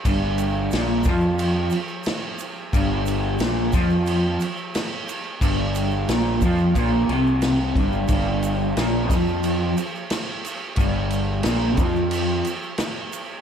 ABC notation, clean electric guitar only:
X:1
M:4/4
L:1/8
Q:1/4=90
K:C
V:1 name="Clean electric guitar" clef=bass
G,,2 _B,, F,2 z3 | G,,2 _B,, F,2 z3 | G,,2 _B,, F, B,, C,2 G,, | G,,2 _B,, F,2 z3 |
G,,2 _B,, F,2 z3 |]